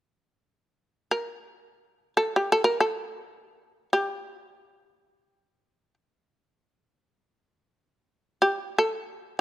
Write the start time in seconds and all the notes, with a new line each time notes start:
1.11 A#4
2.17 A4
2.36 G4
2.52 A4
2.64 A#4
2.80 A4
3.93 G4
8.42 G4
8.78 A4